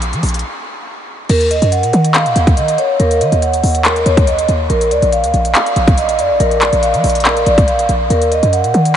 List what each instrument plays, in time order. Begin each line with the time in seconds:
Already playing: 808-style bass A#1
0.02 closed hi-hat
0.13 808-style bass F3, closed hi-hat
0.23 808-style bass A#1, closed hi-hat, open hi-hat
0.29 closed hi-hat
0.34 closed hi-hat
0.39 closed hi-hat
1.29 808-style bass D#2, vibraphone A#4, closed hi-hat, crash
1.41 closed hi-hat
1.51 vibraphone D#5, closed hi-hat
1.62 808-style bass F#2, closed hi-hat
1.72 vibraphone F#5, closed hi-hat
1.83 808-style bass A#2, closed hi-hat
1.93 808-style bass D#3, closed hi-hat
2.04 closed hi-hat
2.14 vibraphone F5, clap, closed hi-hat
2.26 808-style bass A#2, closed hi-hat
2.36 808-style bass D#2, closed hi-hat
2.47 kick, closed hi-hat
2.57 808-style bass D#3, vibraphone D#5, closed hi-hat
2.68 closed hi-hat
2.78 vibraphone C#5, closed hi-hat
3.00 808-style bass D#2, vibraphone A#4, closed hi-hat
3.11 closed hi-hat
3.21 808-style bass D#3, vibraphone D#5, closed hi-hat
3.32 808-style bass D#2, closed hi-hat
3.42 vibraphone F#5, closed hi-hat
3.53 closed hi-hat
3.63 808-style bass D#2, closed hi-hat, open hi-hat
3.75 closed hi-hat
3.85 vibraphone A#4, clap, closed hi-hat
3.96 closed hi-hat
4.06 808-style bass D#2, vibraphone C#5, closed hi-hat
4.17 kick, closed hi-hat
4.27 vibraphone D#5, closed hi-hat
4.39 closed hi-hat
4.48 808-style bass D#2, closed hi-hat
4.70 808-style bass A#1, vibraphone A#4, closed hi-hat
4.81 closed hi-hat
4.91 808-style bass D2, vibraphone D5, closed hi-hat
5.02 808-style bass A#1, closed hi-hat
5.12 vibraphone F5, closed hi-hat
5.24 808-style bass D2, closed hi-hat
5.34 808-style bass A#1, closed hi-hat
5.45 closed hi-hat
5.55 vibraphone F5, clap, closed hi-hat
5.66 closed hi-hat
5.76 808-style bass A#1, closed hi-hat
5.88 kick, closed hi-hat
5.98 vibraphone D#5, closed hi-hat
6.09 closed hi-hat
6.19 808-style bass F2, vibraphone D5, closed hi-hat
6.30 808-style bass A#1
6.40 808-style bass A#1, vibraphone A#4, closed hi-hat
6.51 closed hi-hat
6.61 vibraphone D5, clap, closed hi-hat
6.73 808-style bass A#1, closed hi-hat
6.83 vibraphone F5, closed hi-hat
6.94 808-style bass F3, closed hi-hat
7.04 808-style bass A#1, closed hi-hat, open hi-hat
7.10 closed hi-hat
7.15 closed hi-hat
7.20 closed hi-hat
7.25 vibraphone A#4, clap, closed hi-hat
7.37 closed hi-hat
7.46 808-style bass A#1, vibraphone D5, closed hi-hat
7.58 kick, closed hi-hat
7.68 vibraphone F5, closed hi-hat
7.79 closed hi-hat
7.89 808-style bass A#1, closed hi-hat
8.10 808-style bass D#2, vibraphone A#4, closed hi-hat
8.22 closed hi-hat
8.32 vibraphone D#5, closed hi-hat
8.43 808-style bass F#2, closed hi-hat
8.53 vibraphone F#5, closed hi-hat
8.64 808-style bass A#2, closed hi-hat
8.74 808-style bass D#3, closed hi-hat
8.85 closed hi-hat